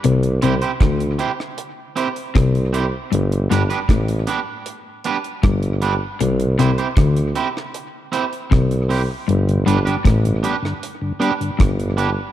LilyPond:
<<
  \new Staff \with { instrumentName = "Clean electric guitar" } { \time 4/4 \key g \major \tempo 4 = 78 r8 <c' e' g' c''>16 <c' e' g' c''>16 r8 <c' e' g' c''>16 r8. <c' e' g' c''>16 r8. <c' e' g' c''>16 r16 | r8 <b d' g' b'>16 <b d' g' b'>16 r8 <b d' g' b'>16 r8. <b d' g' b'>16 r8. <b d' g' b'>16 r16 | r8 <c' e' g' c''>16 <c' e' g' c''>16 r8 <c' e' g' c''>16 r8. <c' e' g' c''>16 r8. <c' e' g' c''>16 r16 | r8 <b d' g' b'>16 <b d' g' b'>16 r8 <b d' g' b'>16 r8. <b d' g' b'>16 r8. <b d' g' b'>16 r16 | }
  \new Staff \with { instrumentName = "Tonewheel organ" } { \clef bass \time 4/4 \key g \major << { r1 | r1 | r1 | r8 <g b d'>8 r8 <g b d'>8 r8 <g b d'>8 r8 <g b d'>8 | } \\ { r1 | r1 | r1 | r16 <g, d>16 r16 <g, d>16 r16 <g, d>16 r16 <g, d>16 r16 <g, d>16 r16 <g, d>16 r16 <g, d>16 r8 | } >> }
  \new Staff \with { instrumentName = "Clean electric guitar" } { \clef bass \time 4/4 \key g \major c8 c16 r16 d8 r4. c8 r8 | g,8 g,16 r16 a,8 r4. g,8 r8 | c8 c16 r16 d8 r4. c8 r8 | g,8 g,16 r16 a,8 r4. g,8 r8 | }
  \new Staff \with { instrumentName = "Tuba" } { \clef bass \time 4/4 \key g \major c,8 c,16 r16 d,8 r4. c,8. r16 | g,,8 g,,16 r16 a,,8 r4. g,,8. r16 | c,8 c,16 r16 d,8 r4. c,8. r16 | g,,8 g,,16 r16 a,,8 r4. g,,8. r16 | }
  \new DrumStaff \with { instrumentName = "Drums" } \drummode { \time 4/4 hh16 hh16 hh16 hh16 <hh bd ss>16 hh16 hh16 ss16 hh8 hh16 hh16 <hh bd ss>16 hh16 hh8 | hh16 hh16 <hh ss>16 hh16 <hh bd ss>16 hh16 hh8 hh8 hh16 hh16 <hh bd ss>16 hh16 hh8 | hh16 hh16 <hh ss>16 hh16 <hh bd ss>16 hh16 hh16 ss16 hh8 hh16 hh16 <hh bd ss>16 hh16 hho8 | hh16 hh16 hh16 hh16 <hh bd ss>16 hh16 hh16 ss16 hh8 hh16 hh16 <hh bd ss>16 hh16 hh8 | }
>>